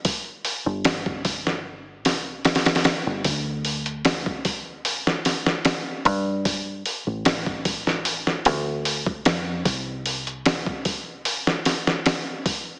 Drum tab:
HH |o---o---o---o-------o---ooooo---|o---o-x-o---o---o---o---o---o---|o---o---o---o---o---o---o---o---|o---o-x-o---o---o---o---o---o---|
SD |--------o-----o-----o---ooooo---|--------o---------o-o-o-o-------|--------o-----o---o-o-------o---|--------o---------o-o-o-o-------|
BD |o---------o-o-------------------|o---------o-o---------------o---|o---------o-o-------------o-----|o---------o-o---------------o---|